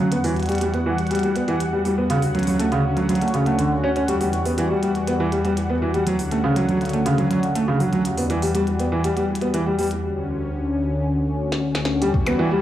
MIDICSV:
0, 0, Header, 1, 6, 480
1, 0, Start_track
1, 0, Tempo, 495868
1, 112, Time_signature, 4, 2, 24, 8
1, 12212, End_track
2, 0, Start_track
2, 0, Title_t, "Synth texture"
2, 0, Program_c, 0, 99
2, 0, Note_on_c, 0, 78, 85
2, 9713, Note_off_c, 0, 78, 0
2, 12212, End_track
3, 0, Start_track
3, 0, Title_t, "Felt piano"
3, 0, Program_c, 1, 0
3, 113, Note_on_c, 1, 59, 77
3, 155, Note_off_c, 1, 59, 0
3, 233, Note_on_c, 1, 52, 95
3, 303, Note_off_c, 1, 52, 0
3, 473, Note_on_c, 1, 55, 71
3, 543, Note_off_c, 1, 55, 0
3, 593, Note_on_c, 1, 55, 77
3, 663, Note_off_c, 1, 55, 0
3, 713, Note_on_c, 1, 59, 70
3, 755, Note_off_c, 1, 59, 0
3, 833, Note_on_c, 1, 52, 94
3, 903, Note_off_c, 1, 52, 0
3, 1073, Note_on_c, 1, 55, 75
3, 1143, Note_off_c, 1, 55, 0
3, 1193, Note_on_c, 1, 55, 74
3, 1263, Note_off_c, 1, 55, 0
3, 1312, Note_on_c, 1, 59, 73
3, 1355, Note_off_c, 1, 59, 0
3, 1433, Note_on_c, 1, 52, 96
3, 1503, Note_off_c, 1, 52, 0
3, 1673, Note_on_c, 1, 55, 69
3, 1743, Note_off_c, 1, 55, 0
3, 1793, Note_on_c, 1, 55, 70
3, 1863, Note_off_c, 1, 55, 0
3, 1913, Note_on_c, 1, 59, 76
3, 1955, Note_off_c, 1, 59, 0
3, 2033, Note_on_c, 1, 49, 92
3, 2103, Note_off_c, 1, 49, 0
3, 2272, Note_on_c, 1, 54, 70
3, 2343, Note_off_c, 1, 54, 0
3, 2393, Note_on_c, 1, 54, 70
3, 2463, Note_off_c, 1, 54, 0
3, 2513, Note_on_c, 1, 57, 81
3, 2555, Note_off_c, 1, 57, 0
3, 2632, Note_on_c, 1, 49, 94
3, 2703, Note_off_c, 1, 49, 0
3, 2873, Note_on_c, 1, 54, 70
3, 2943, Note_off_c, 1, 54, 0
3, 2993, Note_on_c, 1, 54, 77
3, 3063, Note_off_c, 1, 54, 0
3, 3113, Note_on_c, 1, 57, 73
3, 3155, Note_off_c, 1, 57, 0
3, 3233, Note_on_c, 1, 49, 73
3, 3303, Note_off_c, 1, 49, 0
3, 3353, Note_on_c, 1, 57, 74
3, 3423, Note_off_c, 1, 57, 0
3, 3473, Note_on_c, 1, 50, 73
3, 3578, Note_off_c, 1, 50, 0
3, 3712, Note_on_c, 1, 61, 91
3, 3755, Note_off_c, 1, 61, 0
3, 3832, Note_on_c, 1, 61, 73
3, 3875, Note_off_c, 1, 61, 0
3, 3952, Note_on_c, 1, 55, 76
3, 4023, Note_off_c, 1, 55, 0
3, 4072, Note_on_c, 1, 55, 74
3, 4143, Note_off_c, 1, 55, 0
3, 4313, Note_on_c, 1, 59, 72
3, 4355, Note_off_c, 1, 59, 0
3, 4432, Note_on_c, 1, 52, 93
3, 4503, Note_off_c, 1, 52, 0
3, 4553, Note_on_c, 1, 55, 71
3, 4623, Note_off_c, 1, 55, 0
3, 4673, Note_on_c, 1, 55, 71
3, 4743, Note_off_c, 1, 55, 0
3, 4913, Note_on_c, 1, 59, 78
3, 4955, Note_off_c, 1, 59, 0
3, 5032, Note_on_c, 1, 52, 96
3, 5103, Note_off_c, 1, 52, 0
3, 5153, Note_on_c, 1, 55, 71
3, 5223, Note_off_c, 1, 55, 0
3, 5273, Note_on_c, 1, 55, 76
3, 5343, Note_off_c, 1, 55, 0
3, 5513, Note_on_c, 1, 59, 72
3, 5555, Note_off_c, 1, 59, 0
3, 5633, Note_on_c, 1, 52, 89
3, 5703, Note_off_c, 1, 52, 0
3, 5753, Note_on_c, 1, 55, 75
3, 5823, Note_off_c, 1, 55, 0
3, 5872, Note_on_c, 1, 54, 78
3, 5943, Note_off_c, 1, 54, 0
3, 6113, Note_on_c, 1, 57, 74
3, 6155, Note_off_c, 1, 57, 0
3, 6233, Note_on_c, 1, 49, 93
3, 6303, Note_off_c, 1, 49, 0
3, 6352, Note_on_c, 1, 54, 80
3, 6423, Note_off_c, 1, 54, 0
3, 6472, Note_on_c, 1, 54, 70
3, 6543, Note_off_c, 1, 54, 0
3, 6712, Note_on_c, 1, 57, 72
3, 6755, Note_off_c, 1, 57, 0
3, 6832, Note_on_c, 1, 49, 95
3, 6903, Note_off_c, 1, 49, 0
3, 6953, Note_on_c, 1, 54, 76
3, 7023, Note_off_c, 1, 54, 0
3, 7072, Note_on_c, 1, 54, 74
3, 7143, Note_off_c, 1, 54, 0
3, 7313, Note_on_c, 1, 57, 77
3, 7355, Note_off_c, 1, 57, 0
3, 7433, Note_on_c, 1, 49, 95
3, 7503, Note_off_c, 1, 49, 0
3, 7553, Note_on_c, 1, 54, 71
3, 7623, Note_off_c, 1, 54, 0
3, 7673, Note_on_c, 1, 54, 77
3, 7743, Note_off_c, 1, 54, 0
3, 7913, Note_on_c, 1, 59, 73
3, 7955, Note_off_c, 1, 59, 0
3, 8033, Note_on_c, 1, 52, 93
3, 8103, Note_off_c, 1, 52, 0
3, 8153, Note_on_c, 1, 55, 72
3, 8223, Note_off_c, 1, 55, 0
3, 8273, Note_on_c, 1, 55, 83
3, 8343, Note_off_c, 1, 55, 0
3, 8513, Note_on_c, 1, 59, 72
3, 8555, Note_off_c, 1, 59, 0
3, 8633, Note_on_c, 1, 52, 92
3, 8703, Note_off_c, 1, 52, 0
3, 8753, Note_on_c, 1, 55, 74
3, 8823, Note_off_c, 1, 55, 0
3, 8873, Note_on_c, 1, 55, 76
3, 8943, Note_off_c, 1, 55, 0
3, 9113, Note_on_c, 1, 59, 76
3, 9155, Note_off_c, 1, 59, 0
3, 9233, Note_on_c, 1, 52, 96
3, 9303, Note_off_c, 1, 52, 0
3, 9353, Note_on_c, 1, 55, 74
3, 9423, Note_off_c, 1, 55, 0
3, 9473, Note_on_c, 1, 55, 75
3, 9543, Note_off_c, 1, 55, 0
3, 11633, Note_on_c, 1, 55, 78
3, 11703, Note_off_c, 1, 55, 0
3, 11873, Note_on_c, 1, 59, 75
3, 11915, Note_off_c, 1, 59, 0
3, 11993, Note_on_c, 1, 52, 99
3, 12063, Note_off_c, 1, 52, 0
3, 12113, Note_on_c, 1, 55, 84
3, 12183, Note_off_c, 1, 55, 0
3, 12212, End_track
4, 0, Start_track
4, 0, Title_t, "Analog synth pad"
4, 0, Program_c, 2, 89
4, 112, Note_on_c, 2, 40, 74
4, 112, Note_on_c, 2, 52, 72
4, 112, Note_on_c, 2, 55, 69
4, 112, Note_on_c, 2, 66, 80
4, 2013, Note_off_c, 2, 40, 0
4, 2013, Note_off_c, 2, 52, 0
4, 2013, Note_off_c, 2, 55, 0
4, 2033, Note_on_c, 2, 38, 75
4, 2033, Note_on_c, 2, 50, 72
4, 2033, Note_on_c, 2, 61, 69
4, 3933, Note_off_c, 2, 50, 0
4, 3933, Note_off_c, 2, 61, 0
4, 3934, Note_off_c, 2, 38, 0
4, 3952, Note_on_c, 2, 40, 79
4, 3952, Note_on_c, 2, 52, 68
4, 3952, Note_on_c, 2, 55, 71
4, 5853, Note_off_c, 2, 40, 0
4, 5853, Note_off_c, 2, 52, 0
4, 5853, Note_off_c, 2, 55, 0
4, 5873, Note_on_c, 2, 38, 75
4, 5873, Note_on_c, 2, 50, 72
4, 5873, Note_on_c, 2, 61, 70
4, 7774, Note_off_c, 2, 38, 0
4, 7774, Note_off_c, 2, 50, 0
4, 7774, Note_off_c, 2, 61, 0
4, 7792, Note_on_c, 2, 40, 80
4, 7792, Note_on_c, 2, 52, 72
4, 7793, Note_on_c, 2, 55, 69
4, 9693, Note_off_c, 2, 40, 0
4, 9693, Note_off_c, 2, 52, 0
4, 9694, Note_off_c, 2, 55, 0
4, 9713, Note_on_c, 2, 38, 78
4, 9713, Note_on_c, 2, 50, 71
4, 9713, Note_on_c, 2, 61, 70
4, 11594, Note_off_c, 2, 66, 0
4, 11613, Note_off_c, 2, 38, 0
4, 11613, Note_off_c, 2, 61, 0
4, 11614, Note_off_c, 2, 50, 0
4, 11633, Note_on_c, 2, 40, 79
4, 11633, Note_on_c, 2, 52, 72
4, 11633, Note_on_c, 2, 55, 73
4, 11633, Note_on_c, 2, 66, 87
4, 12212, Note_off_c, 2, 40, 0
4, 12212, Note_off_c, 2, 52, 0
4, 12212, Note_off_c, 2, 55, 0
4, 12212, Note_off_c, 2, 66, 0
4, 12212, End_track
5, 0, Start_track
5, 0, Title_t, "Percussion blips"
5, 11873, Note_on_c, 9, 76, 58
5, 11969, Note_off_c, 9, 76, 0
5, 12212, End_track
6, 0, Start_track
6, 0, Title_t, "Drums"
6, 113, Note_on_c, 9, 42, 95
6, 209, Note_off_c, 9, 42, 0
6, 233, Note_on_c, 9, 46, 70
6, 329, Note_off_c, 9, 46, 0
6, 352, Note_on_c, 9, 42, 29
6, 383, Note_off_c, 9, 42, 0
6, 383, Note_on_c, 9, 42, 32
6, 412, Note_off_c, 9, 42, 0
6, 412, Note_on_c, 9, 42, 37
6, 442, Note_off_c, 9, 42, 0
6, 442, Note_on_c, 9, 42, 43
6, 473, Note_off_c, 9, 42, 0
6, 473, Note_on_c, 9, 42, 42
6, 473, Note_on_c, 9, 46, 70
6, 503, Note_off_c, 9, 42, 0
6, 503, Note_on_c, 9, 42, 49
6, 533, Note_off_c, 9, 42, 0
6, 533, Note_on_c, 9, 42, 50
6, 563, Note_off_c, 9, 42, 0
6, 563, Note_on_c, 9, 42, 53
6, 569, Note_off_c, 9, 46, 0
6, 593, Note_off_c, 9, 42, 0
6, 593, Note_on_c, 9, 42, 91
6, 690, Note_off_c, 9, 42, 0
6, 713, Note_on_c, 9, 42, 37
6, 810, Note_off_c, 9, 42, 0
6, 953, Note_on_c, 9, 42, 62
6, 1033, Note_off_c, 9, 42, 0
6, 1033, Note_on_c, 9, 42, 23
6, 1073, Note_off_c, 9, 42, 0
6, 1073, Note_on_c, 9, 42, 82
6, 1113, Note_off_c, 9, 42, 0
6, 1113, Note_on_c, 9, 42, 68
6, 1153, Note_off_c, 9, 42, 0
6, 1153, Note_on_c, 9, 42, 53
6, 1193, Note_off_c, 9, 42, 0
6, 1193, Note_on_c, 9, 42, 40
6, 1290, Note_off_c, 9, 42, 0
6, 1313, Note_on_c, 9, 42, 66
6, 1409, Note_off_c, 9, 42, 0
6, 1433, Note_on_c, 9, 42, 36
6, 1529, Note_off_c, 9, 42, 0
6, 1552, Note_on_c, 9, 42, 91
6, 1649, Note_off_c, 9, 42, 0
6, 1792, Note_on_c, 9, 46, 56
6, 1889, Note_off_c, 9, 46, 0
6, 2032, Note_on_c, 9, 42, 85
6, 2129, Note_off_c, 9, 42, 0
6, 2152, Note_on_c, 9, 46, 73
6, 2249, Note_off_c, 9, 46, 0
6, 2272, Note_on_c, 9, 42, 28
6, 2312, Note_off_c, 9, 42, 0
6, 2312, Note_on_c, 9, 42, 38
6, 2352, Note_off_c, 9, 42, 0
6, 2352, Note_on_c, 9, 42, 49
6, 2392, Note_on_c, 9, 46, 73
6, 2449, Note_off_c, 9, 42, 0
6, 2489, Note_off_c, 9, 46, 0
6, 2512, Note_on_c, 9, 42, 86
6, 2609, Note_off_c, 9, 42, 0
6, 2632, Note_on_c, 9, 42, 35
6, 2729, Note_off_c, 9, 42, 0
6, 2872, Note_on_c, 9, 42, 35
6, 2969, Note_off_c, 9, 42, 0
6, 2992, Note_on_c, 9, 42, 80
6, 3052, Note_off_c, 9, 42, 0
6, 3052, Note_on_c, 9, 42, 65
6, 3112, Note_off_c, 9, 42, 0
6, 3112, Note_on_c, 9, 42, 59
6, 3172, Note_off_c, 9, 42, 0
6, 3172, Note_on_c, 9, 42, 47
6, 3232, Note_off_c, 9, 42, 0
6, 3232, Note_on_c, 9, 42, 62
6, 3329, Note_off_c, 9, 42, 0
6, 3352, Note_on_c, 9, 42, 35
6, 3449, Note_off_c, 9, 42, 0
6, 3472, Note_on_c, 9, 42, 86
6, 3569, Note_off_c, 9, 42, 0
6, 3832, Note_on_c, 9, 42, 35
6, 3929, Note_off_c, 9, 42, 0
6, 3952, Note_on_c, 9, 42, 87
6, 4049, Note_off_c, 9, 42, 0
6, 4072, Note_on_c, 9, 46, 75
6, 4169, Note_off_c, 9, 46, 0
6, 4193, Note_on_c, 9, 42, 62
6, 4289, Note_off_c, 9, 42, 0
6, 4313, Note_on_c, 9, 46, 73
6, 4409, Note_off_c, 9, 46, 0
6, 4432, Note_on_c, 9, 42, 85
6, 4529, Note_off_c, 9, 42, 0
6, 4673, Note_on_c, 9, 42, 56
6, 4769, Note_off_c, 9, 42, 0
6, 4792, Note_on_c, 9, 42, 33
6, 4889, Note_off_c, 9, 42, 0
6, 4912, Note_on_c, 9, 42, 83
6, 5009, Note_off_c, 9, 42, 0
6, 5152, Note_on_c, 9, 42, 64
6, 5249, Note_off_c, 9, 42, 0
6, 5272, Note_on_c, 9, 42, 36
6, 5369, Note_off_c, 9, 42, 0
6, 5392, Note_on_c, 9, 42, 80
6, 5489, Note_off_c, 9, 42, 0
6, 5752, Note_on_c, 9, 42, 35
6, 5849, Note_off_c, 9, 42, 0
6, 5872, Note_on_c, 9, 42, 85
6, 5969, Note_off_c, 9, 42, 0
6, 5992, Note_on_c, 9, 46, 74
6, 6089, Note_off_c, 9, 46, 0
6, 6113, Note_on_c, 9, 42, 60
6, 6209, Note_off_c, 9, 42, 0
6, 6352, Note_on_c, 9, 42, 84
6, 6449, Note_off_c, 9, 42, 0
6, 6473, Note_on_c, 9, 42, 34
6, 6569, Note_off_c, 9, 42, 0
6, 6593, Note_on_c, 9, 42, 25
6, 6633, Note_off_c, 9, 42, 0
6, 6633, Note_on_c, 9, 42, 34
6, 6673, Note_off_c, 9, 42, 0
6, 6673, Note_on_c, 9, 42, 46
6, 6713, Note_off_c, 9, 42, 0
6, 6713, Note_on_c, 9, 42, 34
6, 6810, Note_off_c, 9, 42, 0
6, 6833, Note_on_c, 9, 42, 86
6, 6930, Note_off_c, 9, 42, 0
6, 6953, Note_on_c, 9, 42, 38
6, 7050, Note_off_c, 9, 42, 0
6, 7073, Note_on_c, 9, 42, 62
6, 7170, Note_off_c, 9, 42, 0
6, 7193, Note_on_c, 9, 42, 35
6, 7290, Note_off_c, 9, 42, 0
6, 7313, Note_on_c, 9, 42, 85
6, 7410, Note_off_c, 9, 42, 0
6, 7553, Note_on_c, 9, 46, 57
6, 7650, Note_off_c, 9, 46, 0
6, 7673, Note_on_c, 9, 42, 35
6, 7770, Note_off_c, 9, 42, 0
6, 7793, Note_on_c, 9, 42, 87
6, 7890, Note_off_c, 9, 42, 0
6, 7913, Note_on_c, 9, 46, 80
6, 8010, Note_off_c, 9, 46, 0
6, 8033, Note_on_c, 9, 42, 61
6, 8130, Note_off_c, 9, 42, 0
6, 8153, Note_on_c, 9, 46, 77
6, 8250, Note_off_c, 9, 46, 0
6, 8273, Note_on_c, 9, 42, 90
6, 8370, Note_off_c, 9, 42, 0
6, 8393, Note_on_c, 9, 42, 35
6, 8490, Note_off_c, 9, 42, 0
6, 8513, Note_on_c, 9, 42, 59
6, 8610, Note_off_c, 9, 42, 0
6, 8753, Note_on_c, 9, 42, 83
6, 8850, Note_off_c, 9, 42, 0
6, 8873, Note_on_c, 9, 42, 38
6, 8970, Note_off_c, 9, 42, 0
6, 9053, Note_on_c, 9, 42, 61
6, 9113, Note_off_c, 9, 42, 0
6, 9113, Note_on_c, 9, 42, 36
6, 9210, Note_off_c, 9, 42, 0
6, 9233, Note_on_c, 9, 42, 84
6, 9330, Note_off_c, 9, 42, 0
6, 9473, Note_on_c, 9, 46, 59
6, 9513, Note_off_c, 9, 46, 0
6, 9513, Note_on_c, 9, 46, 50
6, 9553, Note_off_c, 9, 46, 0
6, 9553, Note_on_c, 9, 46, 39
6, 9593, Note_on_c, 9, 42, 37
6, 9650, Note_off_c, 9, 46, 0
6, 9690, Note_off_c, 9, 42, 0
6, 11153, Note_on_c, 9, 38, 64
6, 11250, Note_off_c, 9, 38, 0
6, 11373, Note_on_c, 9, 38, 78
6, 11469, Note_off_c, 9, 38, 0
6, 11472, Note_on_c, 9, 38, 92
6, 11569, Note_off_c, 9, 38, 0
6, 11633, Note_on_c, 9, 42, 59
6, 11729, Note_off_c, 9, 42, 0
6, 11753, Note_on_c, 9, 36, 126
6, 11849, Note_off_c, 9, 36, 0
6, 11873, Note_on_c, 9, 42, 86
6, 11969, Note_off_c, 9, 42, 0
6, 12212, End_track
0, 0, End_of_file